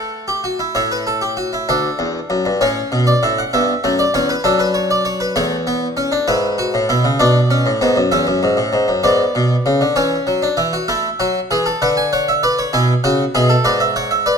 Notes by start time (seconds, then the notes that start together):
Already playing: A3 A4 F#5
0.28 G4
0.44 F#4
0.59 E4
0.75 A2 C#5 E5
0.91 B4
1.07 A4
1.22 G4
1.37 F#4
1.53 E4
1.69 D2 D4 A4
1.99 E2
2.30 F#2
2.46 G2
2.61 A2 C#4 C#5
2.92 B2
3.07 D5
3.23 A2 E5
3.39 F#5
3.53 G2 B3 E5
3.84 F#2 A3
3.99 D5
4.14 E2 C#4 C#5
4.29 B4
4.44 F#2 D4 A4
4.59 B4
4.74 C#5
4.91 D5
5.05 C#5
5.20 B4
5.36 E2 A3 C#5
5.67 B3
5.97 C#4
6.12 D4
6.28 G#2 E4 B4
6.58 F#4
6.74 A2
6.89 B2 E4
7.04 C#3
7.20 B2 D4 D5
7.51 C#4
7.66 A2
7.81 G#2 B3
7.96 F#2
8.11 E2 C#4 E5
8.27 F#2
8.43 G#2
8.57 A2
8.73 G#2
8.88 F#2
9.04 G#2 B3 D5
9.35 B2
9.66 C#3
9.81 D3
9.96 E3 C#4 C#5
10.27 F#3
10.42 D4
10.57 E3 E4
10.73 F#4
10.88 A3 E4 E5
11.20 F#3 F#4
11.51 E3 G#4
11.66 A4
11.82 D3 B4 F#5
11.97 G#5
12.13 C#5 F#5
12.28 E5
12.43 B4 D5
12.59 C#5
12.73 B2 E4 G#5
13.04 C#3 F#4 F#5
13.35 B2 G#4 E5
13.49 A4
13.65 G#2 B4 D5
13.80 E5
13.96 C#5 F#5
14.11 E5
14.26 B4 D5